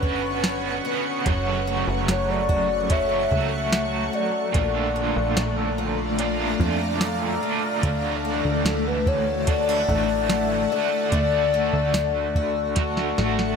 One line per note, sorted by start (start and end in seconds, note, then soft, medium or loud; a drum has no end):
0.00 0.81 F#1 medium
0.00 1.26 D3 medium
0.00 0.84 B3 medium
0.00 0.44 C#4 medium
0.00 1.34 F#4 medium
0.00 0.83 F#4 medium
0.00 0.85 B4 loud
0.00 1.23 B4 medium
0.00 4.51 F#5 medium
0.00 1.23 C#6 medium
0.00 kick medium
0.04 0.87 B3 soft
0.04 0.86 C#4 medium
0.44 2.90 C#4 medium
0.44 snare loud
0.44 closed hi-hat medium
0.44 tambourine medium
0.84 1.34 B3 medium
0.84 1.27 C#4 medium
0.84 1.25 F#4 medium
0.88 1.28 B3 soft
1.24 1.84 F#1 medium
1.24 2.88 F#2 medium
1.24 4.55 F#2 medium
1.24 2.89 C#3 medium
1.24 2.89 F#3 medium
1.24 13.56 A3 medium
1.24 4.52 A4 medium
1.24 4.52 C#6 medium
1.24 kick loud
1.24 closed hi-hat medium
1.29 2.91 A3 medium
1.29 2.91 F#4 medium
1.67 3.31 A3 medium
1.88 2.07 F#1 loud
2.08 3.27 F#1 loud
2.08 2.32 C#5 medium
2.08 snare medium
2.08 closed hi-hat medium
2.08 tambourine medium
2.30 2.93 D5 loud
2.49 4.63 F#4 medium
2.49 kick medium
2.89 3.31 F#2 medium
2.89 3.31 C#3 medium
2.89 3.32 F#3 medium
2.89 3.32 A3 medium
2.89 3.72 C#4 medium
2.89 3.32 C#4 medium
2.89 3.29 F#4 medium
2.89 4.16 E5 loud
2.89 kick loud
2.89 closed hi-hat medium
3.30 4.10 C#2 medium
3.30 4.13 A3 medium
3.30 4.56 A3 soft
3.30 4.54 F#4 medium
3.30 kick medium
3.35 4.55 F#3 soft
3.72 snare loud
3.72 closed hi-hat medium
3.72 tambourine medium
4.13 4.95 A3 medium
4.13 5.79 D5 medium
4.53 5.13 A#1 loud
4.53 6.17 A#2 medium
4.53 7.84 A#2 medium
4.53 6.19 D3 medium
4.53 7.80 D5 medium
4.53 7.81 F5 medium
4.53 7.80 A#5 medium
4.53 kick loud
4.53 closed hi-hat medium
4.57 6.20 A3 medium
4.57 6.21 D4 medium
4.57 6.21 F4 medium
4.96 6.60 A3 medium
5.17 5.36 A#1 loud
5.37 6.56 A#1 loud
5.37 6.18 D4 medium
5.37 snare medium
5.37 closed hi-hat medium
5.37 tambourine medium
5.78 7.92 F4 medium
6.18 7.42 A#2 medium
6.18 7.81 D3 medium
6.18 7.46 A3 medium
6.18 7.01 D4 medium
6.18 7.44 D4 medium
6.18 7.40 F4 medium
6.18 closed hi-hat medium
6.60 7.38 F2 medium
6.60 7.42 A3 medium
6.60 kick medium
7.01 8.65 D4 medium
7.01 snare loud
7.01 closed hi-hat medium
7.01 tambourine medium
7.42 8.24 A3 medium
7.42 7.85 D4 medium
7.42 7.83 F4 medium
7.46 7.84 A3 medium
7.81 8.42 D2 loud
7.81 9.46 D3 medium
7.81 11.13 D3 medium
7.81 9.47 E3 medium
7.81 11.09 E5 medium
7.81 11.09 F#5 medium
7.81 11.09 A5 medium
7.81 kick loud
7.81 closed hi-hat medium
7.85 9.48 A3 medium
7.85 9.49 D4 loud
7.85 9.50 F#4 medium
8.25 9.89 A3 medium
8.45 8.64 D2 medium
8.65 9.85 D2 loud
8.65 9.48 E4 medium
8.65 8.89 A4 medium
8.65 snare loud
8.65 closed hi-hat medium
8.65 tambourine medium
8.87 9.09 B4 loud
9.06 12.35 F#4 medium
9.06 9.50 C#5 loud
9.06 kick loud
9.47 11.10 D3 medium
9.47 10.71 E3 medium
9.47 10.74 A3 medium
9.47 9.69 D4 medium
9.47 10.72 D4 medium
9.47 10.69 F#4 medium
9.47 10.71 D5 loud
9.47 kick loud
9.47 closed hi-hat medium
9.69 10.29 E4 medium
9.89 10.67 A1 loud
9.89 10.71 A3 medium
9.89 kick medium
10.30 11.21 E4 medium
10.30 snare loud
10.30 closed hi-hat medium
10.30 tambourine medium
10.70 11.53 A3 medium
10.70 11.13 D4 medium
10.70 11.11 F#4 soft
10.70 13.55 D5 loud
10.74 11.11 A3 soft
11.10 11.71 D2 loud
11.10 12.74 D3 medium
11.10 13.56 D3 medium
11.10 12.76 A3 medium
11.10 13.56 A4 medium
11.10 13.56 F#5 medium
11.10 13.56 C#6 medium
11.10 kick loud
11.10 closed hi-hat medium
11.17 12.78 F#4 medium
11.54 13.18 A3 medium
11.73 11.93 D2 loud
11.94 13.14 D2 loud
11.94 snare medium
11.94 closed hi-hat medium
11.94 tambourine medium
12.35 13.56 F#4 medium
12.35 kick medium
12.76 13.17 D3 medium
12.76 13.18 A3 medium
12.76 13.16 F#4 loud
12.76 kick loud
12.76 snare medium
12.76 closed hi-hat medium
12.97 snare medium
13.17 13.56 A1 medium
13.17 13.56 A3 medium
13.17 13.56 F#4 medium
13.17 snare medium
13.22 13.56 A3 medium
13.39 snare medium